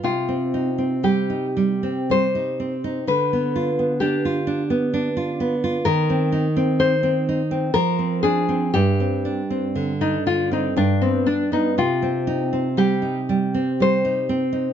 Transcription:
<<
  \new Staff \with { instrumentName = "Nylon-string guitar" } { \time 3/4 \key c \minor \tempo 4 = 60 f'4 g'4 c''4 | b'4 g'4. r8 | bes'4 c''4 bes'8 aes'8 | g'4~ g'16 ees'16 f'16 ees'16 d'16 c'16 d'16 ees'16 |
f'4 g'4 c''4 | }
  \new Staff \with { instrumentName = "Nylon-string guitar" } { \time 3/4 \key c \minor c16 c'16 ees'16 c'16 g16 ees'16 g16 c'16 g16 ees'16 c'16 ees'16 | d16 b16 f'16 b16 d'16 f'16 d'16 b16 d'16 f'16 b16 f'16 | ees16 c'16 ees'16 c'16 ees'16 c'16 ees'16 c'16 f16 c'16 d'16 c'16 | g,16 c'16 d'16 c'16 d16 d'16 d16 c'16 g,16 b16 d'16 b16 |
c16 c'16 ees'16 c'16 g16 ees'16 g16 c'16 g16 ees'16 c'16 ees'16 | }
>>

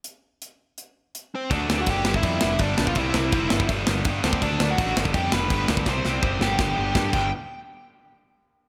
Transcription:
<<
  \new Staff \with { instrumentName = "Lead electric guitar" } { \time 4/4 \key g \major \tempo 4 = 165 r2. r8 <c' c''>8 | <d' d''>8. <fis' fis''>16 <g' g''>8. <e' e''>4~ <e' e''>16 <d' d''>8. <f' f''>16 | <e' e''>2 r4. <c' c''>8 | <d' d''>8. <fis' fis''>8. r8 <g' g''>8 <b' b''>4 r8 |
<c'' c'''>4. <g' g''>2 g''8 | r1 | }
  \new Staff \with { instrumentName = "Distorted electric guitar" } { \clef bass \time 4/4 \key g \major r1 | <d fis a d'>8 <d fis a d'>8 <d fis a d'>8 <g, d g b d'>8 <g, d g b d'>8 <g, d g b d'>8 <g, d g b d'>8 <g, d g b d'>8 | <c g c' e'>8 <c g c' e'>8 <c g c' e'>8 <g, d g b d'>8 <g, d g b d'>8 <g, d g b d'>8 <g, d g b d'>8 <g, d g b d'>8 | <d fis a d'>8 <d fis a d'>8 <d fis a d'>8 <g, d g b d'>8 <g, d g b d'>8 <g, d g b d'>8 <g, d g b d'>8 <g, d g b d'>8 |
<c g c' e'>8 <c g c' e'>8 <c g c' e'>8 <g, d g b d'>8 <g, d g b d'>8 <g, d g b d'>8 <g, d g b d'>8 <g, d g b d'>8 | r1 | }
  \new Staff \with { instrumentName = "Overdriven electric guitar" } { \clef bass \time 4/4 \key g \major r1 | <d a d'>8 <d a d'>8 <d a d'>8 <g, d g>8 <g, d g>8 <g, d g>8 <g, d g>8 <g, d g>8 | <c g c'>8 <c g c'>8 <c g c'>8 <g, d g>8 <g, d g>8 <g, d g>8 <g, d g>8 <g, d g>8 | <d a d'>8 <d a d'>8 <d a d'>8 <g, d g>8 <g, d g>8 <g, d g>8 <g, d g>8 <g, d g>8 |
<c g c'>8 <c g c'>8 <c g c'>8 <g, d g>8 <g, d g>8 <g, d g>8 <g, d g>8 <g, d g>8 | r1 | }
  \new Staff \with { instrumentName = "Picked electric bass" } { \clef bass \time 4/4 \key g \major r1 | d,8 d,8 fis,,8 g,,8 f,8 f,,8 g,,8 b,,8 | c,8 c,8 f,,8 g,,8 g,,8 g,,8 g,8 d,8 | d,8 d,8 a,,8 g,,8 f,8 f,,8 g,,8 d,8 |
c,8 c,8 fis,,8 g,,8 g,,8 g,,8 g,8 g,,8 | r1 | }
  \new DrumStaff \with { instrumentName = "Drums" } \drummode { \time 4/4 hh4 hh4 hh4 hh4 | <cymc bd>8 sn8 <cymc bd>8 sn16 bd16 <cymc bd>8 sn8 <cymc bd>8 sn16 bd16 | <cymc bd>8 sn8 <cymc bd>8 sn16 bd16 <cymc bd>8 sn8 <cymc bd>8 sn16 bd16 | <cymc bd>8 sn8 <cymc bd>8 sn16 bd16 <cymc bd>8 sn8 <cymc bd>8 sn16 bd16 |
<bd sn>8 sn8 bd8 sn8 <bd sn>4 <bd sn>8 <cymc bd>8 | r4 r4 r4 r4 | }
>>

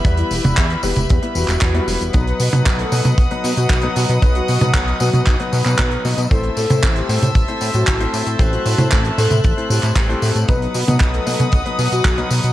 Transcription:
<<
  \new Staff \with { instrumentName = "String section" } { \time 4/4 \key b \phrygian \tempo 4 = 115 << { b''1 | dis'''1~ | dis'''1 | e'''1 |
fis'''1 | dis'''1 | } \\ { <g b' e''>1 | <dis'' fis''>1~ | <dis'' fis''>1 | <c'' e'' a''>1~ |
<c'' e'' a''>1 | <b' dis'' fis''>1 | } >> }
  \new Staff \with { instrumentName = "Soft synth lead" } { \time 4/4 \key b \phrygian r16 e'8 r8. g'8. r16 fis'4~ fis'16 r16 | b'16 r16 b'8 r16 a'8 r4 fis'8 r8. | r16 fis'8 r8. fis'8. r16 b'4~ b'16 r16 | a'16 r16 a'8 r16 g'8 r4 fis'8 r8. |
r16 fis'8 r8. a'8. r16 g'4~ g'16 r16 | b'16 r16 b'8 r16 a'8 r4 fis'8 r8. | }
  \new Staff \with { instrumentName = "Grand piano" } { \time 4/4 \key b \phrygian <g b e' b'>8 r16 <g b e' b'>8. <g b e' b'>16 r8 <g b e' b'>8. r16 <g b e' b'>8. | <fis b dis' b'>8 r16 <fis b dis' b'>8. <fis b dis' b'>16 r8 <fis b dis' b'>8. r16 <fis b dis' b'>8. | <fis b dis' b'>8 r16 <fis b dis' b'>8. <fis b dis' b'>16 r8 <fis b dis' b'>8 <fis b dis' b'>16 <fis b dis'>8 <fis b dis' dis''>16 r16 | <a c' e' c''>8 r16 <a c' e' c''>8. <a c' e' c''>16 r8 <a c' e' c''>8. r16 <a c' e' c''>8. |
<a c' e' c''>8 r16 <a c' e' c''>8. <a c' e' c''>16 r8 <a c' e' c''>8. r16 <a c' e' c''>8. | <fis b dis' b'>8 r16 <fis b dis' b'>8. <fis b dis' b'>16 r8 <fis b dis' b'>8. r16 <fis b dis' b'>8. | }
  \new Staff \with { instrumentName = "Analog synth bass" } { \clef bass \time 4/4 \key b \phrygian e,16 r16 e,,16 e,,16 e,16 r16 e,,16 e,,16 e,16 r16 e,,16 e,,16 e,16 r16 e,,16 e,,16 | b,,16 r16 b,16 b,16 b,,16 r16 b,16 b,16 b,,16 r16 b,16 b,16 b,,16 r16 b,16 b,16 | b,,16 r16 b,16 b,16 b,,16 r16 b,16 b,16 b,,16 r16 b,16 b,16 b,,16 r16 b,16 b,16 | a,,16 r16 a,16 a,16 a,,16 r16 a,16 a,16 a,,16 r16 a,16 a,16 a,,16 r16 a,16 a,16 |
a,,16 r16 a,16 a,16 a,,16 r16 a,16 a,16 a,,16 r16 a,16 a,16 a,,16 r16 a,16 a,16 | b,,16 r16 b,16 b,16 b,,16 r16 b,16 b,16 b,,16 r16 b,16 b,16 b,,16 r16 b,16 b,16 | }
  \new DrumStaff \with { instrumentName = "Drums" } \drummode { \time 4/4 <hh bd tamb>16 hh16 <hho tamb>16 <hh tamb tommh>16 <hc hh bd tamb>16 hh16 <hho tamb>16 <hh tamb tommh>16 <hh bd tamb>16 hh16 <hho tamb>16 <hc hh tamb>16 <hc hh bd>16 hh16 <hho tamb>16 <hh tamb>16 | <hh bd tamb>16 hh16 <hho tamb>16 <hh tamb tommh>16 <hc hh bd tamb>16 hh16 <hho tamb>16 <hh tamb tommh>16 <hh bd tamb>16 hh16 <hho tamb>16 <hh tamb>16 <hc hh bd tamb>16 hh16 <hho tamb>16 <hh tamb>16 | <hh bd tamb>16 hh16 <hho tamb>16 <hh tamb tommh>16 <hc hh bd tamb>16 hh16 <hho tamb>16 <hh tamb tommh>16 <hc hh bd tamb>16 hh16 <hho tamb>16 <hc hh tamb>16 <hc hh bd>16 hh16 <hho tamb>16 <hh tamb>16 | <hh bd tamb>16 hh16 <hho tamb>16 <hh tamb tommh>16 <hc hh bd tamb>16 hh16 <hho tamb>16 <hh tamb tommh>16 <hh bd tamb>16 hh16 <hho tamb>16 <hh tamb>16 <hc hh bd tamb>16 hh16 <hho tamb>16 <hh tamb>16 |
<hh bd tamb>16 hh16 <hho tamb>16 <hh tamb tommh>16 <hc hh bd tamb>16 hh16 <hho tamb>16 <hh tamb tommh>16 <hh bd tamb>16 hh16 <hho tamb>16 <hc hh tamb>16 <hc hh bd tamb>16 hh16 <hho tamb>16 <hh tamb>16 | <hh bd tamb>16 hh16 <hho tamb>16 <hh tamb tommh>16 <hc hh bd tamb>16 hh16 <hho tamb>16 <hh tamb tommh>16 <hh bd tamb>16 hh16 <hho tamb>16 <hh tamb>16 <hc hh bd tamb>16 hh16 <hho tamb>16 <hh tamb>16 | }
>>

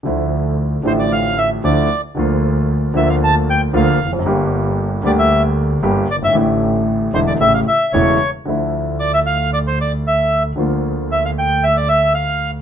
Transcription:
<<
  \new Staff \with { instrumentName = "Bandoneon" } { \time 4/4 \key d \minor \tempo 4 = 114 r4. c''16 d''16 f''8 e''8 d''8. r16 | r4. e''16 f''16 a''8 g''8 f''8. r16 | r4. d''16 e''8 r4 r16 d''16 e''16~ | e''16 r4 r16 c''16 d''16 e''16 f''16 e''8 cis''8. r16 |
r4 d''16 e''16 f''8 d''16 c''16 d''8 e''8. r16 | r4 e''16 f''16 g''8 e''16 d''16 e''8 f''8. r16 | }
  \new Staff \with { instrumentName = "Grand piano" } { \clef bass \time 4/4 \key d \minor <d, d f a e'>4. <a,, a, d f a e'>4. <d, d f a e'>8 r8 | <d, d f bes f'>4. <d, d f bes f'>4. <d, d f bes f'>8 r32 e,32 f,32 fis,32 | <g,, g, d g bes g'>4. <d, d g bes g'>4. <g,, g, d g bes g'>8 r32 fis,,32 g,,32 gis,,32 | <a,, a, d e a e'>4. <e,, e, d e a e'>8 <a,, a, cis e a e'>8 r8 <e,, e, cis e a e'>8 r8 |
<d, d f a e'>1 | <d, d f bes f'>1 | }
  \new Staff \with { instrumentName = "Double bass" } { \clef bass \time 4/4 \key d \minor d,4. a,,4. d,8 r8 | d,4. d,4. d,8 f,,8 | g,,4. d,4. g,,8 g,,8 | a,,4. e,,8 a,,8 r8 e,,8 r8 |
d,1 | d,1 | }
>>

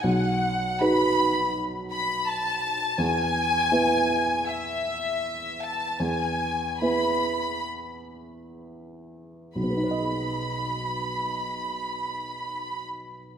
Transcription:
<<
  \new Staff \with { instrumentName = "Violin section" } { \time 4/4 \key b \mixolydian \tempo 4 = 76 fis''4 b''4 r8 b''8 a''4 | gis''2 e''4. a''8 | gis''4 b''4 r2 | b''1 | }
  \new Staff \with { instrumentName = "Grand piano" } { \time 4/4 \key b \mixolydian b,,4 <dis' fis' b'>2. | e,4 <b e' b'>2. | e,4 <b e' b'>2. | <b,, b, b dis' b' dis''>1 | }
>>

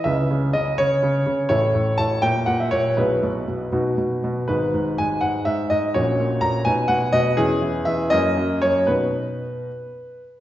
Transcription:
<<
  \new Staff \with { instrumentName = "Grand piano" } { \time 6/8 \key b \mixolydian \tempo 4. = 82 << { e''4 dis''8 cis''4. | cis''4 a''8 g''8 fis''16 e''16 cis''8 | b'4. r4. | \key b \major b'4 gis''8 fis''8 e''8 dis''8 |
cis''4 ais''8 gis''8 fis''8 dis''8 | gis'4 e''8 dis''4 cis''8 | b'2~ b'8 r8 | } \\ { <e' b'>2. | <e' a'>4. e'4. | <e' gis'>4. <dis' fis'>4. | <dis' gis'>2. |
<cis' fis'>4. <dis' fis'>4. | <cis' e'>4. <ais cis'>4. | r2. | } >> }
  \new Staff \with { instrumentName = "Grand piano" } { \clef bass \time 6/8 \key b \mixolydian <cis, cis>8 cis8 cis8 cis8 cis8 cis8 | <a,, a,>8 a,8 a,8 ais,8 ais,8 ais,8 | <b,, b,>8 b,8 b,8 b,8 b,8 b,8 | \key b \major <gis,, gis,>8 gis,8 gis,8 gis,8 gis,8 gis,8 |
<ais,, ais,>8 ais,8 ais,8 b,8 b,8 b,8 | <e, e>8 e8 e8 fis,8 fis,8 fis,8 | <b, b dis'>4. r4. | }
>>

